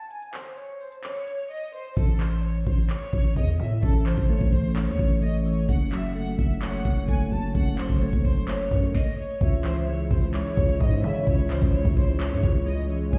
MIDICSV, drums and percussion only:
0, 0, Header, 1, 2, 480
1, 0, Start_track
1, 0, Key_signature, 4, "minor"
1, 0, Tempo, 465116
1, 110, Time_signature, 4, 2, 24, 8
1, 13607, End_track
2, 0, Start_track
2, 0, Title_t, "Drums"
2, 110, Note_on_c, 9, 42, 85
2, 214, Note_off_c, 9, 42, 0
2, 232, Note_on_c, 9, 42, 53
2, 335, Note_off_c, 9, 42, 0
2, 350, Note_on_c, 9, 39, 92
2, 453, Note_off_c, 9, 39, 0
2, 468, Note_on_c, 9, 42, 58
2, 572, Note_off_c, 9, 42, 0
2, 590, Note_on_c, 9, 42, 71
2, 694, Note_off_c, 9, 42, 0
2, 830, Note_on_c, 9, 46, 88
2, 934, Note_off_c, 9, 46, 0
2, 951, Note_on_c, 9, 42, 72
2, 1054, Note_off_c, 9, 42, 0
2, 1070, Note_on_c, 9, 39, 124
2, 1070, Note_on_c, 9, 42, 83
2, 1173, Note_off_c, 9, 42, 0
2, 1174, Note_off_c, 9, 39, 0
2, 1191, Note_on_c, 9, 42, 52
2, 1295, Note_off_c, 9, 42, 0
2, 1313, Note_on_c, 9, 42, 81
2, 1416, Note_off_c, 9, 42, 0
2, 1430, Note_on_c, 9, 42, 58
2, 1533, Note_off_c, 9, 42, 0
2, 1552, Note_on_c, 9, 42, 43
2, 1612, Note_off_c, 9, 42, 0
2, 1612, Note_on_c, 9, 42, 50
2, 1672, Note_off_c, 9, 42, 0
2, 1672, Note_on_c, 9, 42, 66
2, 1732, Note_off_c, 9, 42, 0
2, 1732, Note_on_c, 9, 42, 72
2, 1791, Note_off_c, 9, 42, 0
2, 1791, Note_on_c, 9, 42, 44
2, 1895, Note_off_c, 9, 42, 0
2, 1911, Note_on_c, 9, 42, 71
2, 2014, Note_off_c, 9, 42, 0
2, 2031, Note_on_c, 9, 36, 126
2, 2031, Note_on_c, 9, 42, 84
2, 2134, Note_off_c, 9, 42, 0
2, 2135, Note_off_c, 9, 36, 0
2, 2152, Note_on_c, 9, 42, 52
2, 2256, Note_off_c, 9, 42, 0
2, 2271, Note_on_c, 9, 39, 90
2, 2374, Note_off_c, 9, 39, 0
2, 2389, Note_on_c, 9, 42, 56
2, 2492, Note_off_c, 9, 42, 0
2, 2511, Note_on_c, 9, 42, 44
2, 2614, Note_off_c, 9, 42, 0
2, 2631, Note_on_c, 9, 42, 71
2, 2734, Note_off_c, 9, 42, 0
2, 2751, Note_on_c, 9, 36, 96
2, 2751, Note_on_c, 9, 42, 88
2, 2855, Note_off_c, 9, 36, 0
2, 2855, Note_off_c, 9, 42, 0
2, 2871, Note_on_c, 9, 42, 70
2, 2974, Note_off_c, 9, 42, 0
2, 2991, Note_on_c, 9, 39, 123
2, 2991, Note_on_c, 9, 42, 85
2, 3094, Note_off_c, 9, 39, 0
2, 3094, Note_off_c, 9, 42, 0
2, 3113, Note_on_c, 9, 42, 52
2, 3216, Note_off_c, 9, 42, 0
2, 3232, Note_on_c, 9, 36, 98
2, 3233, Note_on_c, 9, 42, 81
2, 3335, Note_off_c, 9, 36, 0
2, 3336, Note_off_c, 9, 42, 0
2, 3352, Note_on_c, 9, 42, 60
2, 3455, Note_off_c, 9, 42, 0
2, 3470, Note_on_c, 9, 42, 69
2, 3471, Note_on_c, 9, 36, 93
2, 3574, Note_off_c, 9, 42, 0
2, 3575, Note_off_c, 9, 36, 0
2, 3593, Note_on_c, 9, 42, 81
2, 3696, Note_off_c, 9, 42, 0
2, 3711, Note_on_c, 9, 42, 70
2, 3814, Note_off_c, 9, 42, 0
2, 3952, Note_on_c, 9, 36, 122
2, 3952, Note_on_c, 9, 42, 81
2, 4055, Note_off_c, 9, 36, 0
2, 4055, Note_off_c, 9, 42, 0
2, 4073, Note_on_c, 9, 42, 53
2, 4176, Note_off_c, 9, 42, 0
2, 4192, Note_on_c, 9, 39, 90
2, 4295, Note_off_c, 9, 39, 0
2, 4310, Note_on_c, 9, 36, 100
2, 4310, Note_on_c, 9, 42, 55
2, 4413, Note_off_c, 9, 36, 0
2, 4413, Note_off_c, 9, 42, 0
2, 4432, Note_on_c, 9, 42, 44
2, 4535, Note_off_c, 9, 42, 0
2, 4551, Note_on_c, 9, 36, 99
2, 4551, Note_on_c, 9, 42, 75
2, 4654, Note_off_c, 9, 36, 0
2, 4655, Note_off_c, 9, 42, 0
2, 4671, Note_on_c, 9, 36, 94
2, 4672, Note_on_c, 9, 46, 88
2, 4775, Note_off_c, 9, 36, 0
2, 4775, Note_off_c, 9, 46, 0
2, 4792, Note_on_c, 9, 42, 72
2, 4895, Note_off_c, 9, 42, 0
2, 4911, Note_on_c, 9, 39, 124
2, 4911, Note_on_c, 9, 42, 86
2, 5014, Note_off_c, 9, 39, 0
2, 5014, Note_off_c, 9, 42, 0
2, 5032, Note_on_c, 9, 42, 52
2, 5135, Note_off_c, 9, 42, 0
2, 5151, Note_on_c, 9, 36, 103
2, 5152, Note_on_c, 9, 42, 80
2, 5254, Note_off_c, 9, 36, 0
2, 5256, Note_off_c, 9, 42, 0
2, 5271, Note_on_c, 9, 42, 59
2, 5374, Note_off_c, 9, 42, 0
2, 5389, Note_on_c, 9, 42, 68
2, 5492, Note_off_c, 9, 42, 0
2, 5511, Note_on_c, 9, 42, 78
2, 5615, Note_off_c, 9, 42, 0
2, 5630, Note_on_c, 9, 42, 69
2, 5733, Note_off_c, 9, 42, 0
2, 5871, Note_on_c, 9, 36, 125
2, 5871, Note_on_c, 9, 42, 81
2, 5974, Note_off_c, 9, 36, 0
2, 5974, Note_off_c, 9, 42, 0
2, 5992, Note_on_c, 9, 42, 52
2, 6095, Note_off_c, 9, 42, 0
2, 6111, Note_on_c, 9, 39, 90
2, 6214, Note_off_c, 9, 39, 0
2, 6229, Note_on_c, 9, 42, 55
2, 6332, Note_off_c, 9, 42, 0
2, 6351, Note_on_c, 9, 42, 44
2, 6454, Note_off_c, 9, 42, 0
2, 6471, Note_on_c, 9, 42, 72
2, 6574, Note_off_c, 9, 42, 0
2, 6591, Note_on_c, 9, 36, 97
2, 6591, Note_on_c, 9, 42, 88
2, 6694, Note_off_c, 9, 36, 0
2, 6694, Note_off_c, 9, 42, 0
2, 6711, Note_on_c, 9, 42, 71
2, 6814, Note_off_c, 9, 42, 0
2, 6830, Note_on_c, 9, 39, 126
2, 6830, Note_on_c, 9, 42, 84
2, 6933, Note_off_c, 9, 39, 0
2, 6933, Note_off_c, 9, 42, 0
2, 6952, Note_on_c, 9, 42, 53
2, 7055, Note_off_c, 9, 42, 0
2, 7071, Note_on_c, 9, 36, 100
2, 7072, Note_on_c, 9, 42, 86
2, 7174, Note_off_c, 9, 36, 0
2, 7175, Note_off_c, 9, 42, 0
2, 7190, Note_on_c, 9, 42, 58
2, 7294, Note_off_c, 9, 42, 0
2, 7309, Note_on_c, 9, 42, 69
2, 7311, Note_on_c, 9, 36, 94
2, 7412, Note_off_c, 9, 42, 0
2, 7414, Note_off_c, 9, 36, 0
2, 7432, Note_on_c, 9, 42, 79
2, 7535, Note_off_c, 9, 42, 0
2, 7550, Note_on_c, 9, 42, 70
2, 7653, Note_off_c, 9, 42, 0
2, 7791, Note_on_c, 9, 36, 125
2, 7791, Note_on_c, 9, 42, 82
2, 7894, Note_off_c, 9, 42, 0
2, 7895, Note_off_c, 9, 36, 0
2, 7913, Note_on_c, 9, 42, 52
2, 8016, Note_off_c, 9, 42, 0
2, 8031, Note_on_c, 9, 39, 93
2, 8135, Note_off_c, 9, 39, 0
2, 8150, Note_on_c, 9, 36, 102
2, 8150, Note_on_c, 9, 42, 57
2, 8253, Note_off_c, 9, 42, 0
2, 8254, Note_off_c, 9, 36, 0
2, 8272, Note_on_c, 9, 42, 70
2, 8375, Note_off_c, 9, 42, 0
2, 8392, Note_on_c, 9, 36, 98
2, 8495, Note_off_c, 9, 36, 0
2, 8512, Note_on_c, 9, 36, 95
2, 8512, Note_on_c, 9, 46, 85
2, 8615, Note_off_c, 9, 36, 0
2, 8615, Note_off_c, 9, 46, 0
2, 8632, Note_on_c, 9, 42, 71
2, 8735, Note_off_c, 9, 42, 0
2, 8751, Note_on_c, 9, 39, 119
2, 8751, Note_on_c, 9, 42, 86
2, 8854, Note_off_c, 9, 39, 0
2, 8854, Note_off_c, 9, 42, 0
2, 8872, Note_on_c, 9, 42, 51
2, 8976, Note_off_c, 9, 42, 0
2, 8992, Note_on_c, 9, 36, 104
2, 8993, Note_on_c, 9, 42, 84
2, 9095, Note_off_c, 9, 36, 0
2, 9097, Note_off_c, 9, 42, 0
2, 9111, Note_on_c, 9, 42, 58
2, 9214, Note_off_c, 9, 42, 0
2, 9231, Note_on_c, 9, 36, 105
2, 9232, Note_on_c, 9, 38, 90
2, 9335, Note_off_c, 9, 36, 0
2, 9335, Note_off_c, 9, 38, 0
2, 9711, Note_on_c, 9, 36, 122
2, 9712, Note_on_c, 9, 42, 87
2, 9815, Note_off_c, 9, 36, 0
2, 9815, Note_off_c, 9, 42, 0
2, 9833, Note_on_c, 9, 42, 54
2, 9936, Note_off_c, 9, 42, 0
2, 9952, Note_on_c, 9, 39, 93
2, 10055, Note_off_c, 9, 39, 0
2, 10070, Note_on_c, 9, 42, 59
2, 10173, Note_off_c, 9, 42, 0
2, 10192, Note_on_c, 9, 42, 44
2, 10295, Note_off_c, 9, 42, 0
2, 10312, Note_on_c, 9, 42, 77
2, 10415, Note_off_c, 9, 42, 0
2, 10431, Note_on_c, 9, 36, 97
2, 10432, Note_on_c, 9, 42, 85
2, 10535, Note_off_c, 9, 36, 0
2, 10535, Note_off_c, 9, 42, 0
2, 10552, Note_on_c, 9, 42, 75
2, 10655, Note_off_c, 9, 42, 0
2, 10671, Note_on_c, 9, 39, 120
2, 10671, Note_on_c, 9, 42, 88
2, 10774, Note_off_c, 9, 39, 0
2, 10774, Note_off_c, 9, 42, 0
2, 10792, Note_on_c, 9, 42, 54
2, 10896, Note_off_c, 9, 42, 0
2, 10911, Note_on_c, 9, 36, 106
2, 10913, Note_on_c, 9, 42, 86
2, 11015, Note_off_c, 9, 36, 0
2, 11016, Note_off_c, 9, 42, 0
2, 11031, Note_on_c, 9, 42, 60
2, 11135, Note_off_c, 9, 42, 0
2, 11150, Note_on_c, 9, 42, 70
2, 11151, Note_on_c, 9, 36, 98
2, 11253, Note_off_c, 9, 42, 0
2, 11254, Note_off_c, 9, 36, 0
2, 11272, Note_on_c, 9, 42, 81
2, 11375, Note_off_c, 9, 42, 0
2, 11390, Note_on_c, 9, 42, 70
2, 11493, Note_off_c, 9, 42, 0
2, 11631, Note_on_c, 9, 36, 125
2, 11631, Note_on_c, 9, 42, 85
2, 11734, Note_off_c, 9, 36, 0
2, 11734, Note_off_c, 9, 42, 0
2, 11752, Note_on_c, 9, 42, 52
2, 11855, Note_off_c, 9, 42, 0
2, 11871, Note_on_c, 9, 39, 96
2, 11974, Note_off_c, 9, 39, 0
2, 11989, Note_on_c, 9, 42, 60
2, 11990, Note_on_c, 9, 36, 101
2, 12092, Note_off_c, 9, 42, 0
2, 12093, Note_off_c, 9, 36, 0
2, 12111, Note_on_c, 9, 42, 46
2, 12214, Note_off_c, 9, 42, 0
2, 12231, Note_on_c, 9, 36, 99
2, 12231, Note_on_c, 9, 42, 76
2, 12334, Note_off_c, 9, 36, 0
2, 12335, Note_off_c, 9, 42, 0
2, 12352, Note_on_c, 9, 36, 98
2, 12352, Note_on_c, 9, 46, 85
2, 12455, Note_off_c, 9, 36, 0
2, 12455, Note_off_c, 9, 46, 0
2, 12472, Note_on_c, 9, 42, 73
2, 12575, Note_off_c, 9, 42, 0
2, 12591, Note_on_c, 9, 39, 124
2, 12591, Note_on_c, 9, 42, 88
2, 12694, Note_off_c, 9, 39, 0
2, 12694, Note_off_c, 9, 42, 0
2, 12712, Note_on_c, 9, 42, 54
2, 12815, Note_off_c, 9, 42, 0
2, 12831, Note_on_c, 9, 36, 103
2, 12832, Note_on_c, 9, 42, 85
2, 12934, Note_off_c, 9, 36, 0
2, 12936, Note_off_c, 9, 42, 0
2, 12951, Note_on_c, 9, 42, 57
2, 13054, Note_off_c, 9, 42, 0
2, 13070, Note_on_c, 9, 42, 71
2, 13173, Note_off_c, 9, 42, 0
2, 13191, Note_on_c, 9, 42, 78
2, 13294, Note_off_c, 9, 42, 0
2, 13310, Note_on_c, 9, 42, 70
2, 13413, Note_off_c, 9, 42, 0
2, 13550, Note_on_c, 9, 42, 88
2, 13551, Note_on_c, 9, 36, 125
2, 13607, Note_off_c, 9, 36, 0
2, 13607, Note_off_c, 9, 42, 0
2, 13607, End_track
0, 0, End_of_file